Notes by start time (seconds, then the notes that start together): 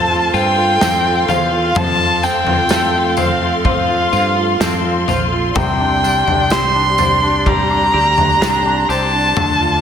Already playing: F2 A3 C4 F4 A4 C5 F5 A5 C6
0.10 F4
0.34 G2 C4 F4 G5, tambourine
0.57 F4
0.81 F2 C4 A4, snare, tambourine
1.05 F4
1.28 E2 F4 C5 F5, floor tom, tambourine
1.53 F4
1.75 F2 F3 A5, floor tom, tambourine
2.00 F4
2.23 C4 G5, tambourine
2.47 F2 F4, floor tom
2.69 A3 A4, snare, tambourine
2.94 F4
3.17 C4 C5 F5, floor tom, tambourine
3.42 F4
3.65 F3 C4 F5, kick, floor tom
3.89 F4
4.13 G2 C4 F4, tambourine
4.36 F4
4.60 F2 C4 A4, snare, tambourine
4.84 F4
5.08 A#1 F4 C5, floor tom, tambourine
5.32 F4
5.55 C2 C3 G4 D5 G5, kick, floor tom, tambourine
5.80 D4
6.04 G3 D4, tambourine
6.27 C2 D4, floor tom
6.50 C4 G4 C6, snare, tambourine
6.75 D4
6.98 D4 C5, floor tom, tambourine
7.23 D4
7.46 G3 A#5, kick, floor tom
7.70 D4
7.94 D2 G3 G4
8.18 D4, floor tom
8.41 C2 D4 G4, snare, tambourine
8.66 D4
8.89 C2 G4 C5 A5, tambourine
9.13 D4
9.36 D2 D3 F4 D5, floor tom, tambourine
9.60 F4